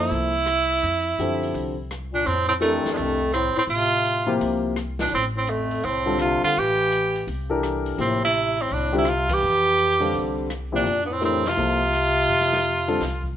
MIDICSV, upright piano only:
0, 0, Header, 1, 2, 480
1, 0, Start_track
1, 0, Key_signature, -1, "major"
1, 0, Tempo, 358209
1, 1108, Time_signature, 4, 2, 24, 8
1, 17914, End_track
2, 0, Start_track
2, 0, Title_t, "Upright piano"
2, 0, Program_c, 0, 0
2, 0, Note_on_c, 0, 53, 62
2, 0, Note_on_c, 0, 58, 48
2, 0, Note_on_c, 0, 64, 57
2, 0, Note_on_c, 0, 69, 49
2, 0, Note_on_c, 0, 72, 69
2, 397, Note_off_c, 0, 58, 0
2, 398, Note_off_c, 0, 53, 0
2, 399, Note_off_c, 0, 64, 0
2, 400, Note_off_c, 0, 69, 0
2, 400, Note_off_c, 0, 72, 0
2, 1598, Note_on_c, 0, 50, 53
2, 1601, Note_on_c, 0, 53, 45
2, 1602, Note_on_c, 0, 60, 49
2, 1605, Note_on_c, 0, 67, 49
2, 1616, Note_on_c, 0, 69, 53
2, 2321, Note_off_c, 0, 50, 0
2, 2323, Note_off_c, 0, 53, 0
2, 2323, Note_off_c, 0, 60, 0
2, 2325, Note_off_c, 0, 67, 0
2, 2330, Note_off_c, 0, 69, 0
2, 3489, Note_on_c, 0, 69, 55
2, 3492, Note_on_c, 0, 52, 60
2, 3495, Note_on_c, 0, 67, 50
2, 3500, Note_on_c, 0, 70, 67
2, 3501, Note_on_c, 0, 62, 58
2, 4227, Note_off_c, 0, 69, 0
2, 4228, Note_off_c, 0, 52, 0
2, 4230, Note_off_c, 0, 67, 0
2, 4232, Note_off_c, 0, 70, 0
2, 4233, Note_off_c, 0, 62, 0
2, 5716, Note_on_c, 0, 48, 60
2, 5716, Note_on_c, 0, 64, 58
2, 5719, Note_on_c, 0, 53, 61
2, 5721, Note_on_c, 0, 58, 63
2, 5734, Note_on_c, 0, 67, 72
2, 6343, Note_off_c, 0, 48, 0
2, 6343, Note_off_c, 0, 64, 0
2, 6344, Note_off_c, 0, 53, 0
2, 6345, Note_off_c, 0, 58, 0
2, 6352, Note_off_c, 0, 67, 0
2, 8119, Note_on_c, 0, 50, 65
2, 8124, Note_on_c, 0, 55, 57
2, 8127, Note_on_c, 0, 65, 60
2, 8128, Note_on_c, 0, 69, 69
2, 8133, Note_on_c, 0, 60, 58
2, 8745, Note_off_c, 0, 50, 0
2, 8747, Note_off_c, 0, 55, 0
2, 8748, Note_off_c, 0, 65, 0
2, 8749, Note_off_c, 0, 69, 0
2, 8751, Note_off_c, 0, 60, 0
2, 10045, Note_on_c, 0, 69, 60
2, 10047, Note_on_c, 0, 52, 65
2, 10057, Note_on_c, 0, 62, 59
2, 10059, Note_on_c, 0, 67, 61
2, 10060, Note_on_c, 0, 70, 79
2, 10667, Note_off_c, 0, 69, 0
2, 10668, Note_off_c, 0, 52, 0
2, 10673, Note_off_c, 0, 62, 0
2, 10674, Note_off_c, 0, 67, 0
2, 10675, Note_off_c, 0, 70, 0
2, 10691, Note_on_c, 0, 48, 47
2, 10698, Note_on_c, 0, 53, 45
2, 10698, Note_on_c, 0, 58, 43
2, 10701, Note_on_c, 0, 64, 42
2, 10706, Note_on_c, 0, 67, 57
2, 10979, Note_off_c, 0, 48, 0
2, 10982, Note_off_c, 0, 53, 0
2, 10982, Note_off_c, 0, 58, 0
2, 10984, Note_off_c, 0, 64, 0
2, 10986, Note_off_c, 0, 67, 0
2, 11958, Note_on_c, 0, 50, 68
2, 11962, Note_on_c, 0, 55, 62
2, 11962, Note_on_c, 0, 60, 64
2, 11967, Note_on_c, 0, 67, 74
2, 11970, Note_on_c, 0, 65, 58
2, 12121, Note_off_c, 0, 50, 0
2, 12123, Note_off_c, 0, 55, 0
2, 12123, Note_off_c, 0, 60, 0
2, 12125, Note_off_c, 0, 67, 0
2, 12127, Note_off_c, 0, 65, 0
2, 13403, Note_on_c, 0, 60, 59
2, 13404, Note_on_c, 0, 50, 61
2, 13408, Note_on_c, 0, 55, 61
2, 13412, Note_on_c, 0, 69, 62
2, 13419, Note_on_c, 0, 77, 60
2, 14027, Note_off_c, 0, 60, 0
2, 14028, Note_off_c, 0, 50, 0
2, 14029, Note_off_c, 0, 55, 0
2, 14031, Note_off_c, 0, 69, 0
2, 14035, Note_off_c, 0, 77, 0
2, 14363, Note_on_c, 0, 53, 57
2, 14369, Note_on_c, 0, 48, 54
2, 14371, Note_on_c, 0, 64, 55
2, 14375, Note_on_c, 0, 67, 58
2, 14380, Note_on_c, 0, 58, 49
2, 14524, Note_off_c, 0, 53, 0
2, 14527, Note_off_c, 0, 48, 0
2, 14528, Note_off_c, 0, 64, 0
2, 14530, Note_off_c, 0, 67, 0
2, 14532, Note_off_c, 0, 58, 0
2, 15018, Note_on_c, 0, 67, 51
2, 15019, Note_on_c, 0, 57, 50
2, 15021, Note_on_c, 0, 52, 54
2, 15024, Note_on_c, 0, 70, 59
2, 15030, Note_on_c, 0, 62, 55
2, 15303, Note_off_c, 0, 57, 0
2, 15303, Note_off_c, 0, 67, 0
2, 15304, Note_off_c, 0, 52, 0
2, 15306, Note_off_c, 0, 70, 0
2, 15309, Note_off_c, 0, 62, 0
2, 15501, Note_on_c, 0, 58, 48
2, 15506, Note_on_c, 0, 53, 49
2, 15507, Note_on_c, 0, 64, 48
2, 15508, Note_on_c, 0, 72, 55
2, 15510, Note_on_c, 0, 69, 45
2, 15784, Note_off_c, 0, 58, 0
2, 15787, Note_off_c, 0, 53, 0
2, 15787, Note_off_c, 0, 64, 0
2, 15788, Note_off_c, 0, 72, 0
2, 15789, Note_off_c, 0, 69, 0
2, 17254, Note_on_c, 0, 60, 61
2, 17258, Note_on_c, 0, 50, 61
2, 17261, Note_on_c, 0, 55, 55
2, 17263, Note_on_c, 0, 65, 57
2, 17263, Note_on_c, 0, 69, 71
2, 17410, Note_off_c, 0, 60, 0
2, 17412, Note_off_c, 0, 50, 0
2, 17413, Note_off_c, 0, 55, 0
2, 17414, Note_off_c, 0, 65, 0
2, 17415, Note_off_c, 0, 69, 0
2, 17914, End_track
0, 0, End_of_file